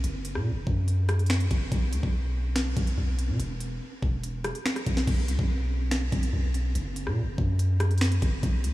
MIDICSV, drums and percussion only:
0, 0, Header, 1, 2, 480
1, 0, Start_track
1, 0, Tempo, 419580
1, 45, Time_signature, 4, 2, 24, 8
1, 9993, End_track
2, 0, Start_track
2, 0, Title_t, "Drums"
2, 45, Note_on_c, 9, 42, 98
2, 159, Note_off_c, 9, 42, 0
2, 284, Note_on_c, 9, 42, 96
2, 399, Note_off_c, 9, 42, 0
2, 405, Note_on_c, 9, 37, 70
2, 519, Note_off_c, 9, 37, 0
2, 765, Note_on_c, 9, 36, 96
2, 879, Note_off_c, 9, 36, 0
2, 1005, Note_on_c, 9, 42, 86
2, 1119, Note_off_c, 9, 42, 0
2, 1244, Note_on_c, 9, 42, 76
2, 1245, Note_on_c, 9, 37, 105
2, 1358, Note_off_c, 9, 42, 0
2, 1359, Note_off_c, 9, 37, 0
2, 1365, Note_on_c, 9, 42, 43
2, 1445, Note_off_c, 9, 42, 0
2, 1445, Note_on_c, 9, 42, 58
2, 1486, Note_on_c, 9, 26, 100
2, 1486, Note_on_c, 9, 38, 123
2, 1525, Note_off_c, 9, 42, 0
2, 1525, Note_on_c, 9, 42, 71
2, 1600, Note_off_c, 9, 26, 0
2, 1600, Note_off_c, 9, 38, 0
2, 1605, Note_off_c, 9, 42, 0
2, 1605, Note_on_c, 9, 42, 70
2, 1720, Note_off_c, 9, 42, 0
2, 1724, Note_on_c, 9, 42, 78
2, 1726, Note_on_c, 9, 36, 93
2, 1839, Note_off_c, 9, 42, 0
2, 1840, Note_off_c, 9, 36, 0
2, 1965, Note_on_c, 9, 36, 109
2, 1965, Note_on_c, 9, 42, 100
2, 2079, Note_off_c, 9, 42, 0
2, 2080, Note_off_c, 9, 36, 0
2, 2204, Note_on_c, 9, 42, 99
2, 2318, Note_off_c, 9, 42, 0
2, 2325, Note_on_c, 9, 36, 84
2, 2439, Note_off_c, 9, 36, 0
2, 2925, Note_on_c, 9, 26, 99
2, 2925, Note_on_c, 9, 38, 120
2, 2925, Note_on_c, 9, 42, 88
2, 3039, Note_off_c, 9, 26, 0
2, 3039, Note_off_c, 9, 38, 0
2, 3040, Note_off_c, 9, 42, 0
2, 3164, Note_on_c, 9, 42, 74
2, 3165, Note_on_c, 9, 36, 96
2, 3278, Note_off_c, 9, 42, 0
2, 3280, Note_off_c, 9, 36, 0
2, 3285, Note_on_c, 9, 42, 71
2, 3400, Note_off_c, 9, 42, 0
2, 3645, Note_on_c, 9, 42, 82
2, 3760, Note_off_c, 9, 42, 0
2, 3885, Note_on_c, 9, 42, 97
2, 3999, Note_off_c, 9, 42, 0
2, 4124, Note_on_c, 9, 42, 96
2, 4238, Note_off_c, 9, 42, 0
2, 4605, Note_on_c, 9, 36, 95
2, 4719, Note_off_c, 9, 36, 0
2, 4845, Note_on_c, 9, 42, 89
2, 4960, Note_off_c, 9, 42, 0
2, 5084, Note_on_c, 9, 42, 76
2, 5085, Note_on_c, 9, 37, 104
2, 5198, Note_off_c, 9, 42, 0
2, 5199, Note_off_c, 9, 37, 0
2, 5206, Note_on_c, 9, 42, 68
2, 5320, Note_off_c, 9, 42, 0
2, 5326, Note_on_c, 9, 26, 101
2, 5326, Note_on_c, 9, 38, 121
2, 5441, Note_off_c, 9, 26, 0
2, 5441, Note_off_c, 9, 38, 0
2, 5446, Note_on_c, 9, 42, 70
2, 5447, Note_on_c, 9, 37, 69
2, 5560, Note_off_c, 9, 42, 0
2, 5561, Note_off_c, 9, 37, 0
2, 5565, Note_on_c, 9, 42, 80
2, 5566, Note_on_c, 9, 36, 91
2, 5679, Note_off_c, 9, 42, 0
2, 5681, Note_off_c, 9, 36, 0
2, 5686, Note_on_c, 9, 38, 62
2, 5800, Note_off_c, 9, 38, 0
2, 5805, Note_on_c, 9, 36, 110
2, 5805, Note_on_c, 9, 42, 98
2, 5806, Note_on_c, 9, 49, 97
2, 5920, Note_off_c, 9, 36, 0
2, 5920, Note_off_c, 9, 42, 0
2, 5920, Note_off_c, 9, 49, 0
2, 6045, Note_on_c, 9, 42, 100
2, 6159, Note_off_c, 9, 42, 0
2, 6165, Note_on_c, 9, 36, 85
2, 6280, Note_off_c, 9, 36, 0
2, 6766, Note_on_c, 9, 26, 99
2, 6766, Note_on_c, 9, 38, 122
2, 6766, Note_on_c, 9, 42, 89
2, 6880, Note_off_c, 9, 26, 0
2, 6880, Note_off_c, 9, 38, 0
2, 6880, Note_off_c, 9, 42, 0
2, 7005, Note_on_c, 9, 42, 78
2, 7006, Note_on_c, 9, 36, 96
2, 7119, Note_off_c, 9, 42, 0
2, 7120, Note_off_c, 9, 36, 0
2, 7126, Note_on_c, 9, 42, 68
2, 7241, Note_off_c, 9, 42, 0
2, 7486, Note_on_c, 9, 42, 83
2, 7600, Note_off_c, 9, 42, 0
2, 7725, Note_on_c, 9, 42, 103
2, 7839, Note_off_c, 9, 42, 0
2, 7965, Note_on_c, 9, 42, 99
2, 8079, Note_off_c, 9, 42, 0
2, 8086, Note_on_c, 9, 37, 72
2, 8200, Note_off_c, 9, 37, 0
2, 8445, Note_on_c, 9, 36, 97
2, 8559, Note_off_c, 9, 36, 0
2, 8686, Note_on_c, 9, 42, 90
2, 8800, Note_off_c, 9, 42, 0
2, 8924, Note_on_c, 9, 42, 79
2, 8925, Note_on_c, 9, 37, 105
2, 9039, Note_off_c, 9, 42, 0
2, 9040, Note_off_c, 9, 37, 0
2, 9046, Note_on_c, 9, 42, 44
2, 9126, Note_off_c, 9, 42, 0
2, 9126, Note_on_c, 9, 42, 60
2, 9166, Note_on_c, 9, 26, 100
2, 9166, Note_on_c, 9, 38, 127
2, 9206, Note_off_c, 9, 42, 0
2, 9206, Note_on_c, 9, 42, 73
2, 9281, Note_off_c, 9, 26, 0
2, 9281, Note_off_c, 9, 38, 0
2, 9286, Note_off_c, 9, 42, 0
2, 9286, Note_on_c, 9, 42, 73
2, 9400, Note_off_c, 9, 42, 0
2, 9405, Note_on_c, 9, 42, 83
2, 9406, Note_on_c, 9, 36, 94
2, 9520, Note_off_c, 9, 42, 0
2, 9521, Note_off_c, 9, 36, 0
2, 9646, Note_on_c, 9, 36, 114
2, 9646, Note_on_c, 9, 42, 98
2, 9760, Note_off_c, 9, 36, 0
2, 9760, Note_off_c, 9, 42, 0
2, 9885, Note_on_c, 9, 42, 100
2, 9993, Note_off_c, 9, 42, 0
2, 9993, End_track
0, 0, End_of_file